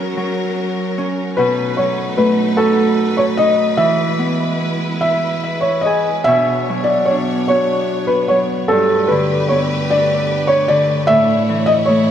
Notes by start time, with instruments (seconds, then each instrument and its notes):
Already playing: harp F#3 B3 C#4 F#4, string section F#3 C#4 A#4, felt piano A#4
0.17 harp F#3
0.98 harp C#4
1.37 harp B2, string section A3 D#4 B4, felt piano B4
1.77 harp F#3, felt piano C#5
2.17 harp A3, felt piano B4
2.57 harp F#4, felt piano A4
3.17 felt piano C#5
3.37 harp D#4, felt piano D#5
3.77 harp E3, string section G#3 E4, felt piano E5
4.18 harp B3
4.60 harp E4
5.01 harp B4, felt piano E5
5.43 harp E5
5.61 felt piano C#5
5.81 harp G#4, felt piano D#5
5.86 harp G#5
6.24 harp B2, string section B3 D4 C#5, felt piano E5
6.69 harp F#3
6.84 felt piano D5
7.05 felt piano C#5
7.10 harp D4
7.48 harp F#4, felt piano C#5
8.07 felt piano B4
8.28 harp F#3, felt piano C#5
8.68 harp G2, string section A3 B4, felt piano A4
8.72 string section G4
9.08 harp D3, felt piano B4
9.49 harp B3, felt piano C#5
9.90 harp D4, felt piano D5
10.47 felt piano C#5
10.68 harp D3, felt piano D5
11.07 harp A2, string section E4 C#5, felt piano E5
11.49 harp E3
11.66 felt piano D#5
11.86 harp A3, felt piano C#5